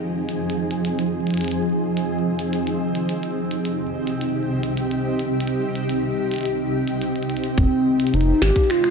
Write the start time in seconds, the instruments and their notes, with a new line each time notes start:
Already playing: ambient pad F3 C4 D#4 G#4
0.29 closed hi-hat
0.50 closed hi-hat
0.71 closed hi-hat
0.85 closed hi-hat
0.99 closed hi-hat
1.27 closed hi-hat
1.31 closed hi-hat
1.34 closed hi-hat
1.37 closed hi-hat
1.41 closed hi-hat
1.45 closed hi-hat
1.48 closed hi-hat
1.51 closed hi-hat
1.97 closed hi-hat
2.39 closed hi-hat
2.53 closed hi-hat
2.67 closed hi-hat
2.95 closed hi-hat
3.09 ambient pad C3 G4, closed hi-hat
3.23 closed hi-hat
3.51 closed hi-hat
3.65 closed hi-hat
4.07 closed hi-hat
4.21 closed hi-hat
4.63 closed hi-hat
4.77 closed hi-hat
4.91 closed hi-hat
5.19 closed hi-hat
5.40 closed hi-hat
5.47 closed hi-hat
5.75 closed hi-hat
5.89 closed hi-hat
6.32 closed hi-hat
6.34 closed hi-hat
6.36 closed hi-hat
6.38 closed hi-hat
6.41 closed hi-hat
6.43 closed hi-hat
6.46 closed hi-hat
6.88 closed hi-hat
7.02 closed hi-hat
7.16 closed hi-hat
7.23 closed hi-hat
7.30 closed hi-hat
7.37 closed hi-hat
7.44 closed hi-hat
7.58 analog synth bass F1, ambient pad G#3 D#4 F4, soft synth lead C4, kick, closed hi-hat
8.00 closed hi-hat
8.07 closed hi-hat
8.14 analog synth bass F1, soft synth lead D#4, closed hi-hat
8.21 closed hi-hat
8.42 analog synth bass G#1, soft synth lead G4, snare
8.56 kick, closed hi-hat
8.70 soft synth lead F4, finger snap, closed hi-hat
8.84 finger snap